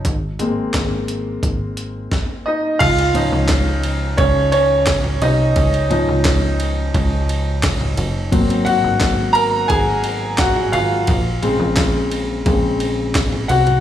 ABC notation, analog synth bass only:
X:1
M:4/4
L:1/16
Q:1/4=87
K:Db
V:1 name="Analog synth bass" clef=bass
A,,,4 A,,,4 A,,,4 z4 | D,,3 D,, D,,4 D,,6 C,,2 | D,,3 D,, D,,4 D,,6 G,,,2 | A,,,3 A,,, A,,,4 A,,,6 A,,,2 |
B,,,3 B,,, B,,,4 B,,,6 C,,2 |]